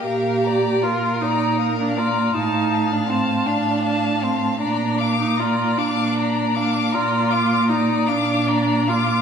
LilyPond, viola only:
\new Staff \with { instrumentName = "Viola" } { \time 12/8 \key bes \major \tempo 4. = 52 g'4 f'8 ees'8. d'16 f'8 ees'8. d'16 c'8 d'4 c'8 | d'8. ees'16 f'8 d'4 d'8 f'4 ees'8 d'4 f'8 | }